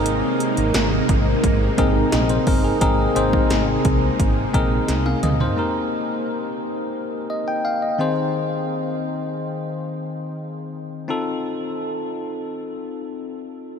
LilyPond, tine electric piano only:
\new Staff \with { instrumentName = "Tine electric piano" } { \time 4/4 \key aes \major \tempo 4 = 87 << { r2. ees''16 c''16 bes'16 aes'16~ | aes'16 r2. f''16 ees''16 c''16~ | \key ees \major c''16 r2 r16 ees''16 g''16 f''16 ees''8 r16 | r1 |
r1 | } \\ { <c' ees' aes' bes'>4 r4. <c' ees' aes' bes'>8 r4 | <c' ees' aes' bes'>8 <c' ees' aes' c''>4. r8 <c' ees' aes' bes'>4 r8 | <bes ees' g' bes'>2.~ <bes ees' g' bes'>8 <ees c' ees' aes' c''>8~ | <ees c' ees' aes' c''>2.~ <ees c' ees' aes' c''>8 r8 |
<c' ees' f' a'>1 | } >> }